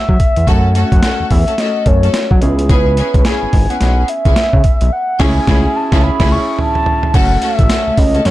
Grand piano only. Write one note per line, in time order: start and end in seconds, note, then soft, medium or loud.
0.00 0.43 A3 medium
0.00 0.43 C#4 medium
0.00 0.44 F#4 medium
0.00 0.47 A4 medium
0.46 1.83 A3 medium
0.46 1.83 C#4 medium
0.46 1.84 F#4 medium
0.46 1.84 A4 medium
1.86 2.42 A3 medium
1.86 2.40 C#4 soft
1.86 2.42 F#4 soft
1.86 2.42 A4 medium
2.41 4.60 B3 medium
2.41 4.60 C#4 medium
2.41 4.60 E4 medium
2.41 4.61 G#4 medium
5.20 5.40 C#4 loud
5.20 5.40 E4 loud
5.20 5.40 G#4 loud
5.47 5.67 C#4 loud
5.47 5.68 E4 loud
5.47 5.68 G#4 loud
5.92 6.10 C#4 medium
5.92 6.10 E4 loud
5.92 6.11 G#4 loud
6.20 6.38 C#4 loud
6.20 6.38 E4 loud
6.20 6.39 G#4 loud
7.13 8.31 A3 medium
7.13 8.31 C#4 medium
7.13 8.31 F#4 medium
7.13 8.31 A4 medium